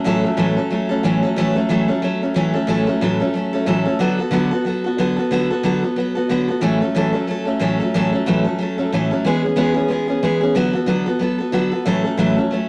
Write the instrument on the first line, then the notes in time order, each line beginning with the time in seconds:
steel-string acoustic guitar
0.04 A2 E3 F#3 A3 C#4 A4
0.24 F#3 A3 C#4 A4
0.37 A2 E3 F#3 A3 C#4 A4
0.57 F#3 A3 C#4 A4
0.70 F#3 A3 C#4 A4
0.89 F#3 A3 C#4 A4
1.03 A2 E3 F#3 A3 C#4 A4
1.23 F#3 A3 C#4 A4
1.36 A2 E3 F#3 A3 C#4 A4
1.56 F#3 A3 C#4 A4
1.69 A2 E3 F#3 A3 C#4 A4
1.88 F#3 A3 C#4 A4
2.02 F#3 A3 C#4 A4
2.22 F#3 A3 C#4 A4
2.34 A2 E3 F#3 A3 C#4 A4
2.54 F#3 A3 C#4 A4
2.67 A2 E3 F#3 A3 C#4 A4
2.87 F#3 A3 C#4 A4
3.01 A2 E3 F#3 A3 C#4 A4
3.20 F#3 A3 C#4 A4
3.34 F#3 A3 C#4 A4
3.53 F#3 A3 C#4 A4
3.66 A2 E3 F#3 A3 C#4 A4
3.85 F#3 A3 C#4 A4
3.99 D3 F#3 B3 F#4 A4
4.19 B3 F#4 A4
4.31 D3 F#3 B3 F#4 A4
4.51 F#4 A4
4.55 B3
4.65 F#3 B3 F#4 A4
4.84 B3 F#4 A4
4.98 D3 F#3 B3 F#4 A4
5.16 B3 F#4 A4
5.31 D3 F#3 B3 F#4 A4
5.50 B3 F#4 A4
5.63 D3 F#3 B3 F#4 A4
5.83 B3 F#4 A4
5.96 F#3 B3 F#4 A4
6.15 B3 F#4 A4
6.29 D3 F#3 B3 F#4 A4
6.48 B3 F#4 A4
6.61 A2 E3 F#3 A3 C#4 A4
6.81 F#3 A3 C#4 A4
6.95 A2 E3 F#3 A3 C#4 A4
7.13 F#3 A3 C#4 A4
7.27 F#3 A3 C#4 A4
7.45 F#3 A3 C#4 A4
7.59 A2 E3 F#3 A3 C#4 A4
7.80 F#3 A3 C#4 A4
7.94 A2 E3 F#3 A3 C#4 A4
8.12 F#3 A3 C#4 A4
8.26 A2 E3 F#3 A3 C#4 A4
8.44 F#3 A3 C#4 A4
8.59 F#3 A3 C#4 A4
8.78 F#3 A3 C#4 A4
8.93 A2 E3 F#3 A3 C#4 A4
9.11 F#3 A3 C#4 A4
9.25 E3 G#3 B3 C#4 G#4
9.43 B3 C#4 G#4
9.56 E3 G#3 B3 C#4 G#4
9.74 B3 C#4 G#4
9.88 G#3 B3 C#4 G#4
10.08 B3 C#4 G#4
10.23 E3 G#3 B3 C#4 G#4
10.41 B3 C#4 G#4
10.55 D3 F#3 B3 F#4 A4
10.73 B3 F#4 A4
10.86 D3 F#3 B3 F#4 A4
11.06 B3 F#4 A4
11.19 F#3 B3 F#4 A4
11.38 B3 F#4 A4
11.52 D3 F#3 B3 F#4 A4
11.71 B3 F#4 A4
11.85 A2 E3 F#3 A3 C#4 A4
12.04 F#3 A3 C#4 A4
12.17 A2 E3 F#3 A3 C#4 A4
12.37 F#3 A3 C#4 A4
12.51 F#3 A3 C#4 A4